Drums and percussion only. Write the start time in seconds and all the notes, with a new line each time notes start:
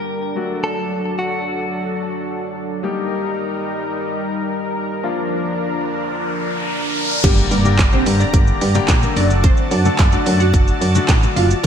7.24 kick, closed hi-hat, crash, shaker
7.38 shaker
7.51 open hi-hat, shaker
7.65 shaker
7.79 kick, snare, clap, closed hi-hat, shaker
7.93 shaker
8.06 open hi-hat, shaker
8.20 shaker
8.34 kick, closed hi-hat, shaker
8.47 shaker
8.61 open hi-hat, shaker
8.75 shaker
8.88 kick, snare, clap, closed hi-hat, shaker
9.03 shaker
9.16 open hi-hat, shaker
9.30 shaker
9.44 kick, closed hi-hat, shaker
9.57 shaker
9.71 open hi-hat, shaker
9.85 shaker
9.99 kick, snare, clap, closed hi-hat, shaker
10.12 shaker
10.26 open hi-hat, shaker
10.40 shaker
10.54 kick, closed hi-hat, shaker
10.68 shaker
10.82 open hi-hat, shaker
10.95 shaker
11.09 kick, snare, clap, closed hi-hat, shaker
11.23 shaker
11.37 open hi-hat, shaker
11.51 shaker